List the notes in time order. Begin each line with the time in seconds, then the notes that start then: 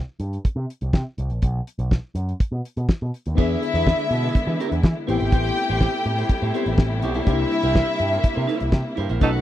0.20 G2, closed hi-hat
0.33 closed hi-hat
0.45 muted picked electric bass stroke, kick, closed hi-hat
0.56 C3
0.70 closed hi-hat
0.81 C2, closed hi-hat
0.93 C3, kick, snare
1.18 C2, closed hi-hat
1.30 A#1, closed hi-hat
1.42 B1, kick, closed hi-hat
1.67 closed hi-hat
1.79 B1, closed hi-hat
1.91 kick, snare
2.15 F#2, closed hi-hat
2.29 closed hi-hat
2.40 kick, closed hi-hat
2.52 B2
2.65 closed hi-hat
2.77 B2, closed hi-hat
2.89 kick, snare
3.02 B2
3.14 closed hi-hat
3.26 D#2, closed hi-hat
3.35 E2 D3 G#3 B3 D4 E4 G#4 B4 E5, kick, crash
3.62 muted clean electric guitar stroke, closed hi-hat
3.74 E2 D4 G#4 B4, snare, closed hi-hat
3.86 D4 G#4 B4, kick, snare
3.99 muted clean electric guitar stroke
4.11 B2, muted clean electric guitar stroke, closed hi-hat
4.24 D4 G#4 B4, closed hi-hat
4.34 muted clean electric guitar stroke, muted picked electric bass stroke, kick, closed hi-hat
4.47 E3 D4 G#4 B4
4.59 D4 G#4 B4, closed hi-hat
4.72 E2, muted clean electric guitar stroke, closed hi-hat
4.83 E3, muted clean electric guitar stroke, kick, snare
4.96 muted clean electric guitar stroke
5.07 A1 C3 G3 A3 B3 C4 E4 G4 C5 G5, closed hi-hat
5.19 G#1 E4 G4 C5, closed hi-hat
5.32 A1 E4 G4 C5, kick, closed hi-hat
5.57 muted clean electric guitar stroke, closed hi-hat
5.69 A1 E4 G4 C5, closed hi-hat
5.81 E4 G4 C5, kick, snare
5.94 muted clean electric guitar stroke
6.04 A2, muted clean electric guitar stroke, closed hi-hat
6.18 E4 G4 C5, closed hi-hat
6.29 muted picked electric bass stroke, muted clean electric guitar stroke, kick, closed hi-hat
6.42 A2 E4 G4 C5, closed hi-hat
6.54 B3 C4 E4 G4 C5, closed hi-hat
6.66 A1, muted clean electric guitar stroke, closed hi-hat
6.78 A1, muted clean electric guitar stroke, kick, snare
6.93 muted clean electric guitar stroke
7.02 B1 E4 G4 C5, closed hi-hat
7.15 E4 G4 C5, closed hi-hat
7.25 C2 A#3 D4 D#4 E4 G4 A#4 E5, kick, closed hi-hat
7.29 E4 C5
7.51 muted clean electric guitar stroke, closed hi-hat
7.63 C2 E4 A#4 C5, closed hi-hat
7.75 E4 A#4 C5, kick, snare
7.87 muted clean electric guitar stroke
7.99 G2, muted clean electric guitar stroke, closed hi-hat
8.12 E4 A#4 C5, closed hi-hat
8.23 muted clean electric guitar stroke, muted picked electric bass stroke, kick, closed hi-hat
8.35 C3 E4 A#4 C5
8.47 E4 A#4 C5, closed hi-hat
8.60 C2, muted clean electric guitar stroke, closed hi-hat
8.72 C3, muted clean electric guitar stroke, kick, snare
8.85 muted clean electric guitar stroke
8.96 G2 E4 A#4 C5, closed hi-hat
9.09 A#1 E4 A#4 C5, closed hi-hat
9.20 B1 D#3 F#3 A3 B3 C#4 D#4 F4 F#4 A4 B4 F#5, kick, closed hi-hat
9.29 F#4